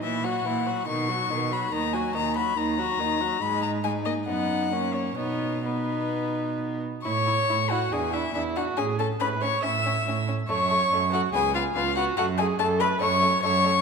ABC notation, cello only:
X:1
M:4/4
L:1/8
Q:1/4=141
K:B
V:1 name="Cello" clef=bass
A,,2 A,,2 B,,2 B,,2 | D,,2 D,,2 D,,2 D,,2 | G,,4 F,,4 | B,,6- B,, z |
[K:A] A,,2 A,,2 E,,2 E,,2 | A,,2 A,,2 A,,2 A,,2 | F,,2 F,,2 C,,2 C,,2 | F,,2 F,,2 F,,2 F,,2 |]